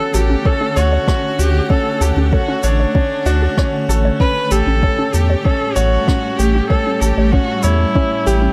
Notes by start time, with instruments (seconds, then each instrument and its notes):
Already playing: ambient pad D3 A3 B3 C#5 F#5, grand piano C#4 F#4, viola A4
0.14 sub bass A1, synth arpeggio sound F#4, viola G4, grand piano A4, shaker
0.30 synth arpeggio sound C#4
0.45 grand piano C#4, viola A4, synth arpeggio sound A4, kick
0.61 synth arpeggio sound C#4
0.76 sub bass D2, viola F#4, grand piano C#5, shaker
0.92 synth arpeggio sound C#5
1.08 grand piano C#4, synth arpeggio sound C#4, kick, cross-stick
1.39 sub bass D2, grand piano F#4, viola G4, shaker
1.70 grand piano C#4, synth arpeggio sound C#4, viola A4, kick
2.01 sub bass D2, synth arpeggio sound F#4, viola G4, grand piano A4, shaker
2.16 sub bass D2, synth arpeggio sound C#4
2.26 viola G4
2.33 grand piano C#4, viola F#4, synth arpeggio sound A4, kick
2.48 synth arpeggio sound C#4
2.63 sub bass A1, viola D4, grand piano C#5, shaker
2.80 synth arpeggio sound C#5
2.95 synth arpeggio sound C#4, grand piano C#4, kick
3.26 sub bass D2, grand piano F#4, synth arpeggio sound D5, shaker
3.42 synth arpeggio sound F#4
3.58 grand piano C#4, synth arpeggio sound C#5, kick, cross-stick
3.89 sub bass A1, synth arpeggio sound F#4, grand piano A4, shaker
4.05 synth arpeggio sound C#5
4.20 ambient pad A2, grand piano C#4, synth arpeggio sound C#4, viola B4, kick
4.51 sub bass A1, synth arpeggio sound G4, grand piano G4, viola A4, shaker
4.67 sub bass A1, synth arpeggio sound C#4
4.73 ambient pad G3
4.83 grand piano C#4, synth arpeggio sound A4, kick
4.99 synth arpeggio sound C#4
5.14 sub bass E2, viola G4, grand piano A4, shaker
5.30 synth arpeggio sound C#5
5.44 grand piano C#4, synth arpeggio sound C#4, viola A4, kick
5.75 sub bass A1, viola F#4, grand piano C#5, shaker
6.07 grand piano C#4, synth arpeggio sound C#4, kick, cross-stick
6.37 sub bass A1, viola G4, grand piano G4, synth arpeggio sound G4, shaker
6.55 synth arpeggio sound C#4
6.68 grand piano C#4, viola A4, synth arpeggio sound A4, kick
6.86 synth arpeggio sound C#4
7.00 sub bass A1, viola G4, grand piano A4, shaker
7.17 sub bass A1, synth arpeggio sound C#5
7.32 grand piano C#4, synth arpeggio sound C#4, viola F#4, kick
7.63 sub bass E2, viola E4, grand piano C#5, shaker
7.95 grand piano C#4, synth arpeggio sound C#4, kick
8.26 sub bass A1, synth arpeggio sound G4, grand piano G4, shaker
8.42 synth arpeggio sound C#4